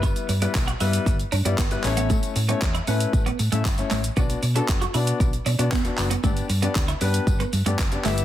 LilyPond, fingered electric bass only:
\new Staff \with { instrumentName = "Fingered electric bass" } { \clef bass \time 4/4 \key g \lydian \tempo 4 = 116 g,,8 g,8 b,,8 g,8 g,,8 g,16 g,16 g,,8 a,,8~ | a,,8 a,8 e,8 a,8 a,,8 a,16 a,16 g,,8 a,,8 | b,,8 b,8 fis,,8 b,8 b,,8 b,16 b,16 e,,8 fis,,8 | g,,8 g,8 d,8 g,8 g,,8 g,16 g,16 fis,,8 g,,8 | }